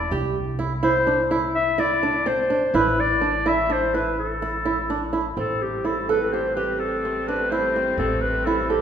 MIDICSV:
0, 0, Header, 1, 5, 480
1, 0, Start_track
1, 0, Key_signature, 0, "minor"
1, 0, Tempo, 476569
1, 120, Time_signature, 11, 3, 24, 8
1, 8878, End_track
2, 0, Start_track
2, 0, Title_t, "Clarinet"
2, 0, Program_c, 0, 71
2, 0, Note_on_c, 0, 74, 77
2, 125, Note_off_c, 0, 74, 0
2, 844, Note_on_c, 0, 72, 98
2, 1288, Note_off_c, 0, 72, 0
2, 1563, Note_on_c, 0, 76, 91
2, 1812, Note_on_c, 0, 74, 94
2, 1827, Note_off_c, 0, 76, 0
2, 2284, Note_on_c, 0, 72, 89
2, 2299, Note_off_c, 0, 74, 0
2, 2778, Note_on_c, 0, 71, 87
2, 2793, Note_off_c, 0, 72, 0
2, 3021, Note_on_c, 0, 74, 89
2, 3036, Note_off_c, 0, 71, 0
2, 3506, Note_on_c, 0, 76, 91
2, 3521, Note_off_c, 0, 74, 0
2, 3747, Note_on_c, 0, 72, 81
2, 3762, Note_off_c, 0, 76, 0
2, 3977, Note_on_c, 0, 71, 71
2, 3992, Note_off_c, 0, 72, 0
2, 4208, Note_off_c, 0, 71, 0
2, 4221, Note_on_c, 0, 69, 71
2, 5130, Note_off_c, 0, 69, 0
2, 5423, Note_on_c, 0, 69, 81
2, 5660, Note_on_c, 0, 67, 72
2, 5675, Note_off_c, 0, 69, 0
2, 5895, Note_on_c, 0, 69, 73
2, 5910, Note_off_c, 0, 67, 0
2, 6141, Note_on_c, 0, 71, 82
2, 6156, Note_off_c, 0, 69, 0
2, 6372, Note_on_c, 0, 72, 81
2, 6388, Note_off_c, 0, 71, 0
2, 6592, Note_off_c, 0, 72, 0
2, 6598, Note_on_c, 0, 71, 71
2, 6845, Note_on_c, 0, 69, 76
2, 6860, Note_off_c, 0, 71, 0
2, 7328, Note_on_c, 0, 71, 78
2, 7343, Note_off_c, 0, 69, 0
2, 7564, Note_on_c, 0, 72, 89
2, 7579, Note_off_c, 0, 71, 0
2, 8037, Note_off_c, 0, 72, 0
2, 8043, Note_on_c, 0, 69, 78
2, 8271, Note_on_c, 0, 71, 78
2, 8286, Note_off_c, 0, 69, 0
2, 8512, Note_on_c, 0, 69, 76
2, 8528, Note_off_c, 0, 71, 0
2, 8758, Note_off_c, 0, 69, 0
2, 8767, Note_on_c, 0, 67, 77
2, 8878, Note_off_c, 0, 67, 0
2, 8878, End_track
3, 0, Start_track
3, 0, Title_t, "Nylon-string guitar"
3, 0, Program_c, 1, 24
3, 120, Note_on_c, 1, 67, 78
3, 373, Note_off_c, 1, 67, 0
3, 592, Note_on_c, 1, 64, 68
3, 721, Note_off_c, 1, 64, 0
3, 833, Note_on_c, 1, 64, 74
3, 961, Note_off_c, 1, 64, 0
3, 1074, Note_on_c, 1, 62, 70
3, 1202, Note_off_c, 1, 62, 0
3, 1319, Note_on_c, 1, 64, 73
3, 1572, Note_off_c, 1, 64, 0
3, 1794, Note_on_c, 1, 64, 70
3, 1922, Note_off_c, 1, 64, 0
3, 2044, Note_on_c, 1, 62, 73
3, 2169, Note_off_c, 1, 62, 0
3, 2277, Note_on_c, 1, 60, 77
3, 2404, Note_off_c, 1, 60, 0
3, 2518, Note_on_c, 1, 62, 64
3, 2645, Note_off_c, 1, 62, 0
3, 2764, Note_on_c, 1, 64, 76
3, 3015, Note_off_c, 1, 64, 0
3, 3237, Note_on_c, 1, 62, 69
3, 3364, Note_off_c, 1, 62, 0
3, 3483, Note_on_c, 1, 64, 75
3, 3608, Note_off_c, 1, 64, 0
3, 3722, Note_on_c, 1, 62, 66
3, 3847, Note_off_c, 1, 62, 0
3, 3971, Note_on_c, 1, 64, 70
3, 4221, Note_off_c, 1, 64, 0
3, 4454, Note_on_c, 1, 64, 66
3, 4576, Note_off_c, 1, 64, 0
3, 4688, Note_on_c, 1, 64, 68
3, 4812, Note_off_c, 1, 64, 0
3, 4934, Note_on_c, 1, 62, 76
3, 5057, Note_off_c, 1, 62, 0
3, 5165, Note_on_c, 1, 64, 65
3, 5290, Note_off_c, 1, 64, 0
3, 5410, Note_on_c, 1, 60, 64
3, 5660, Note_off_c, 1, 60, 0
3, 5887, Note_on_c, 1, 64, 59
3, 6012, Note_off_c, 1, 64, 0
3, 6136, Note_on_c, 1, 69, 64
3, 6258, Note_off_c, 1, 69, 0
3, 6381, Note_on_c, 1, 67, 58
3, 6502, Note_off_c, 1, 67, 0
3, 6614, Note_on_c, 1, 67, 62
3, 6864, Note_off_c, 1, 67, 0
3, 7100, Note_on_c, 1, 60, 61
3, 7222, Note_off_c, 1, 60, 0
3, 7336, Note_on_c, 1, 62, 62
3, 7459, Note_off_c, 1, 62, 0
3, 7573, Note_on_c, 1, 64, 68
3, 7696, Note_off_c, 1, 64, 0
3, 7816, Note_on_c, 1, 60, 62
3, 7939, Note_off_c, 1, 60, 0
3, 8053, Note_on_c, 1, 60, 73
3, 8304, Note_off_c, 1, 60, 0
3, 8529, Note_on_c, 1, 64, 65
3, 8654, Note_off_c, 1, 64, 0
3, 8761, Note_on_c, 1, 69, 65
3, 8878, Note_off_c, 1, 69, 0
3, 8878, End_track
4, 0, Start_track
4, 0, Title_t, "String section"
4, 0, Program_c, 2, 48
4, 5400, Note_on_c, 2, 60, 70
4, 5404, Note_on_c, 2, 55, 57
4, 5406, Note_on_c, 2, 57, 60
4, 8878, Note_off_c, 2, 55, 0
4, 8878, Note_off_c, 2, 57, 0
4, 8878, Note_off_c, 2, 60, 0
4, 8878, End_track
5, 0, Start_track
5, 0, Title_t, "Upright bass"
5, 0, Program_c, 3, 32
5, 113, Note_on_c, 3, 36, 79
5, 2715, Note_off_c, 3, 36, 0
5, 2757, Note_on_c, 3, 33, 75
5, 5359, Note_off_c, 3, 33, 0
5, 5407, Note_on_c, 3, 33, 62
5, 8006, Note_off_c, 3, 33, 0
5, 8033, Note_on_c, 3, 33, 72
5, 8878, Note_off_c, 3, 33, 0
5, 8878, End_track
0, 0, End_of_file